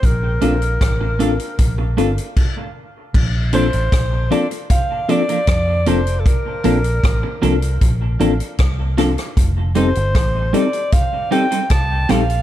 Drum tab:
CC |------------x---|x---------------|----------------|----------------|
HH |x-xxx-xxx-xx----|--xxx-xxx-xxx-xx|x-xxx-xxx-xxx-xx|x-xxx-xxx-xxx-xx|
SD |----r-----------|----r-------r---|----r-------r-rr|----r-------r-r-|
BD |o---o---o---o---|o---o---o---o---|o---o---o---o---|o---o---o---o---|